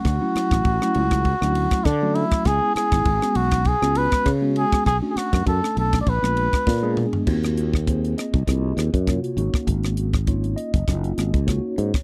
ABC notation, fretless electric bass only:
X:1
M:4/4
L:1/16
Q:"Swing 16ths" 1/4=100
K:Dlyd
V:1 name="Fretless electric bass" clef=bass
D,, z2 A,,, A,,, z C,,3 D,,2 z D,3 z | C,, z2 G,,, G,,, z B,,,3 C,,2 z C,3 z | B,,, z2 F,, F,, z B,,,2 ^A,,, A,,,2 z ^A,,3 z | [K:Ebdor] E,,6- E,, C,, C,,2 E,, G,,2 z A,,, z |
A,,,6- A,,, G,,, G,,,2 A,,, D,,2 z A,, z |]